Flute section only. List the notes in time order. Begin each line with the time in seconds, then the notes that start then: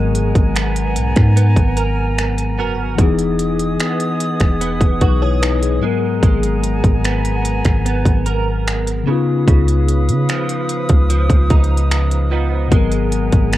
Already playing: F#5 G#5 A#5
2.98 G#4 D#5 D#6
5.82 F#5 G#5 A#5
9.07 B4 F5 D#6
12.71 F#5 G#5 A#5